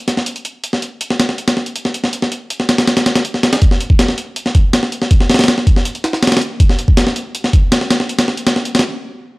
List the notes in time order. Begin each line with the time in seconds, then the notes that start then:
0.08 snare, closed hi-hat
0.17 snare
0.26 closed hi-hat
0.36 closed hi-hat
0.45 closed hi-hat
0.64 closed hi-hat
0.73 snare
0.82 closed hi-hat
1.01 closed hi-hat
1.10 snare
1.20 snare, closed hi-hat
1.29 snare
1.38 closed hi-hat
1.48 snare, closed hi-hat
1.57 snare
1.66 closed hi-hat
1.76 closed hi-hat
1.85 snare
1.94 closed hi-hat
2.04 snare
2.13 closed hi-hat
2.22 snare
2.32 closed hi-hat
2.50 closed hi-hat
2.60 snare
2.69 snare, closed hi-hat
2.78 snare, closed hi-hat
2.87 snare, closed hi-hat
2.97 snare, closed hi-hat
3.06 snare, closed hi-hat
3.15 snare, closed hi-hat
3.25 closed hi-hat
3.34 snare
3.43 snare, closed hi-hat
3.53 snare, closed hi-hat
3.62 kick, closed hi-hat
3.71 snare
3.80 closed hi-hat
3.90 kick
3.99 snare, closed hi-hat
4.08 snare
4.18 closed hi-hat
4.36 closed hi-hat
4.46 snare
4.55 kick, closed hi-hat
4.73 snare, closed hi-hat
4.83 snare
4.92 closed hi-hat
5.02 snare
5.11 kick, closed hi-hat
5.20 snare
5.29 snare, closed hi-hat
5.34 snare, closed hi-hat
5.39 snare, closed hi-hat
5.44 snare, closed hi-hat
5.48 snare, closed hi-hat
5.58 snare
5.67 kick, closed hi-hat
5.76 snare
5.85 closed hi-hat
5.95 closed hi-hat
6.04 snare, closed hi-hat
6.13 snare
6.23 snare, closed hi-hat
6.27 snare, closed hi-hat
6.32 snare, closed hi-hat
6.37 snare, closed hi-hat
6.41 closed hi-hat
6.60 kick, closed hi-hat
6.69 snare
6.79 closed hi-hat
6.88 kick
6.97 snare, closed hi-hat
7.07 snare
7.16 closed hi-hat
7.35 closed hi-hat
7.44 snare
7.53 kick, closed hi-hat
7.72 snare, closed hi-hat
7.81 snare
7.91 snare, closed hi-hat
8.00 snare
8.09 closed hi-hat
8.19 snare, closed hi-hat
8.28 snare
8.37 closed hi-hat
8.47 snare, closed hi-hat
8.56 snare
8.65 closed hi-hat
8.75 snare, closed hi-hat
8.79 snare, closed hi-hat